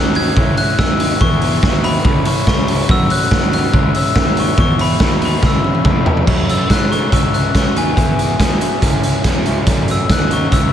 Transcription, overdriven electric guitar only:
Already playing: C#3 F#3 A3 C#4
0.15 F#3 A3 C#4
0.36 C#3 G#3 C#4 E4
0.57 G#3 C#4 E4
0.78 C#3 G#3 C#4 E4
1.20 E3 G#3 B3 E4
1.41 G#3 B3 E4
1.61 E3 G#3 B3 E4
1.82 G#3 B3 E4
2.03 C#3 G#3 C#4 E4
2.25 G#3 C#4 E4
2.46 C#3 G#3 C#4 E4
2.87 F#3 A3 C#4 F#4
3.08 A3 C#4 F#4
3.30 F#3 A3 C#4 F#4
3.51 A3 C#4 F#4
3.71 C#3 G#3 C#4 E4
3.93 G#3 C#4 E4
4.14 C#3 G#3 C#4 E4
4.56 E3 G#3 B3 E4
4.77 G#3 B3 E4
4.98 E3 G#3 B3 E4
5.20 G#3 B3 E4
5.40 C#3 G#3 C#4 E4
5.62 G#3 C#4 E4
5.83 C#3 G#3 C#4 E4
6.25 F#2 C#3 F#3 A3 C#4
6.68 F#2 C#3 F#3 A3 C#4
6.90 F#2 C#3 F#3 A3 C#4
7.10 C#3 G#3 C#4 E4
7.53 C#3 G#3 C#4 E4
7.75 C#3 G#3 C#4 E4
7.96 E3 G#3 B3 E4
8.38 E3 G#3 B3 E4
8.59 E3 G#3 B3 E4
8.81 C#3 G#3 C#4 E4
9.23 C#3 G#3 C#4 E4
9.44 C#3 G#3 C#4 E4
9.66 F#2 C#3 F#3 A3 C#4
10.09 F#2 C#3 F#3 A3 C#4
10.30 F#2 C#3 F#3 A3 C#4
10.51 C#3 G#3 C#4 E4

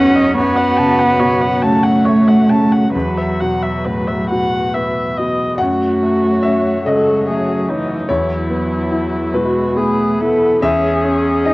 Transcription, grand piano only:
Already playing: B1 E2 F#2 B3
0.38 F#2
0.79 C#3
1.19 B2
1.63 C#3
2.06 A3
2.49 C#3
2.95 E2
3.41 B2
3.86 A2
4.31 B2
4.75 B3
5.18 B2
5.58 F#2 F#5
6.03 A3
6.43 C#4 E5
6.86 C#3 D#5
7.30 A3
7.69 C#4
8.09 E2 C#5
8.50 B3
8.92 E4
9.34 B2 B4
9.76 B3
10.21 E4
10.62 E2 E5
11.04 C#4
11.45 D#4 D#5

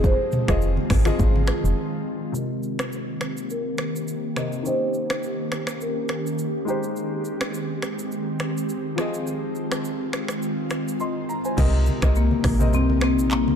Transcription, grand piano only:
Already playing: F3 F4 G#4 D#5
0.47 F3 F4 G#4 D#5
1.05 F3 F4 G#4 D#5
2.32 C3 C4 A#4
2.37 D#5
4.36 C3 C4 A#4 D#5
4.63 D#3 C#4 G4
4.68 D#5
6.65 G#3 D#4 G4
6.70 C5
8.96 F3 F4 G#4
9.01 D#5
11.00 D#5 C6
11.29 A#5
11.45 C5 G#5
11.57 C3 C4 A#4 D#5
12.01 C3 C4 A#4 D#5
12.59 C3 C4 A#4 D#5

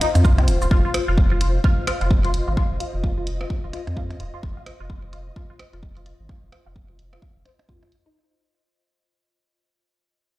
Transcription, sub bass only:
0.15 F2
0.25 C2
0.48 D#1
0.62 D#1
0.71 F1
1.08 F1
2.01 F1
2.48 G#1
2.71 F1
2.94 F1
3.64 F1
3.87 F2
4.20 D#1
4.43 F1
4.80 F1
5.73 F1
6.20 G#1
6.43 F1
6.66 F1
7.36 F1
7.69 F2

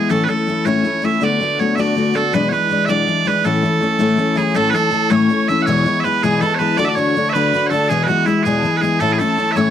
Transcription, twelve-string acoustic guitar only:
Already playing: B3 E4
0.09 A2 E3 A3 C#4 E4
0.27 E3 A3 C#4 E4
0.47 E3 A3 C#4 E4
0.65 A2 E3 A3 C#4 E4
0.83 E3 A3 C#4 E4
1.02 E3 A3 C#4 E4
1.21 D3 A3 B3 F#4
1.40 D3 A3 B3 F#4
1.59 D3 A3 B3 F#4
1.78 D3 A3 B3 F#4
1.95 D3 A3 B3 F#4
2.14 D3 A3 B3 F#4
2.33 E2 B2 E3 G#3 D4 E4
2.51 E3 G#3 D4 E4
2.69 E3 G#3 D4 E4
2.88 E2 B2 E3 G#3 D4 E4
3.07 E3 G#3 D4 E4
3.25 E3 G#3 D4 E4
3.44 A2 E3 A3 C#4 E4
3.63 E3 A3 C#4 E4
3.81 E3 A3 C#4 E4
3.99 A2 E3 A3 C#4 E4
4.17 E3 A3 C#4 E4
4.35 E3 A3 C#4 E4
4.54 A2 E3 A3 C#4 E4
4.73 E3 A3 C#4 E4
4.91 E3 A3 C#4 E4
5.10 A2 E3 A3 C#4 E4
5.29 E3 A3 C#4 E4
5.48 E3 A3 C#4 E4
5.67 E2 B2 E3 G#3 B3 E4
5.85 E3 G#3 B3 E4
6.04 E3 G#3 B3 E4
6.23 E2 B2 E3 G#3 B3 E4
6.41 E3 G#3 B3 E4
6.59 E3 G#3 B3 E4
6.77 D3 A3 D4 F#4
6.96 D3 A3 D4 F#4
7.16 D3 A3 D4 F#4
7.35 D3 A3 D4 F#4
7.53 D3 A3 D4 F#4
7.70 D3 A3 D4 F#4
7.90 E2 B2 E3 G#3 B3 E4
8.07 E3 G#3 B3 E4
8.26 E3 G#3 B3 E4
8.45 E2 B2 E3 G#3 B3 E4
8.63 E3 G#3 B3 E4
8.81 E3 G#3 B3 E4
9.00 A2 E3 A3 C#4 E4
9.19 E3 A3 C#4 E4
9.37 E3 A3 C#4 E4
9.56 A2 E3 A3 C#4 E4

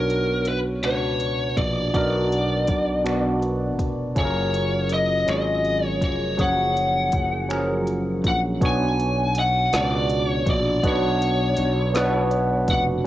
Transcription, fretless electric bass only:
Already playing: B1
0.85 C#2
1.57 A#1
1.95 B1
2.69 B1
3.80 F1
4.17 F#1
5.28 G#1
6.02 F1
6.39 F#1
7.14 F#1
8.25 A#1
8.62 B1
9.73 C#2
10.47 A#1
10.84 B1
11.58 B1
12.69 F1

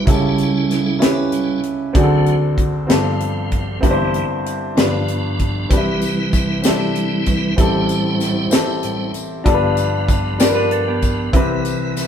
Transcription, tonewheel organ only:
0.07 C#3 G3 C#4 E4 A4
1.32 C#3 G3 C#4
1.94 D3 F#3 C4
2.89 G2 F3 C4
3.83 G2 E3 G3
4.76 G2 F3 B3 D4
5.70 C3 E3 G3 C4 E4 B4
6.64 G3 E4 G4
7.27 B4
7.58 A2 G3 C4 E4 G4 C5
8.84 A2 G3 C4
9.47 G2 F3 B3
11.34 C3 E3 B4

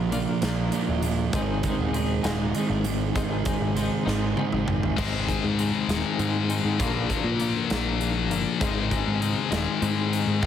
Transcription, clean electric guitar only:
Already playing: A#2 F3 A#3 D4 F4 A#4
0.11 A#3 D4 F4 A#4
0.41 A#2 F3 A#3 D4 F4 A#4
0.72 A#3 D4 F4 A#4
1.32 G#2 D#3 G#3 C4 D#4 G#4
1.63 G#3 C4 D#4 G#4
1.93 G#3 C4 D#4 G#4
2.23 G#2 D#3 G#3 C4 D#4 G#4
2.54 G#3 C4 D#4 G#4
3.14 G#2 D#3 G#3 C4 D#4 G#4
3.45 G#3 C4 D#4 G#4
3.75 G#3 C4 D#4 G#4
4.05 G#2 D#3 G#3 C4 D#4 G#4
4.36 G#3 C4 D#4 G#4
4.97 G#3 C4 D#4 G#4
5.28 G#3 C4 D#4 G#4
5.59 G#3 C4 D#4 G#4
5.89 G#3 C4 D#4 G#4
6.19 G#3 C4 D#4 G#4
6.50 G#3 C4 D#4 G#4
6.79 A#3 D4 F4 A#4
7.09 A#3 D4 F4 A#4
7.40 A#3 D4 F4 A#4
7.70 A#3 D4 F4 A#4
8.00 A#3 D4 F4 A#4
8.31 A#3 D4 F4 A#4
8.60 G#3 C4 D#4 G#4
8.91 G#3 C4 D#4 G#4
9.21 G#3 C4 D#4 G#4
9.50 G#3 C4 D#4 G#4
9.82 G#3 C4 D#4 G#4
10.11 G#3 C4 D#4 G#4
10.42 F3 G#3 C4 F4

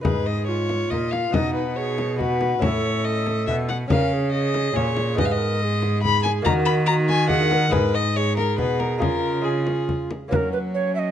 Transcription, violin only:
0.04 B4
0.26 D#5
0.47 C#5
0.90 D#5
1.11 F5
1.33 D#5
1.54 B4
1.76 C#5
2.19 B4
2.62 C#5
3.04 D#5
3.47 E5
3.69 F#5
3.90 F5
4.32 D#5
4.76 C#5
5.19 D#5
5.26 F5
5.32 D#5
6.03 B5
6.23 G#5
6.45 A#5
6.65 B5
6.86 A#5
7.09 G#5
7.29 F#5
7.72 B4
7.94 D#5
8.16 C#5
8.37 A#4
8.59 B4
8.80 A#4
9.00 A#4
9.45 G#4
10.31 C#4
10.74 C#4

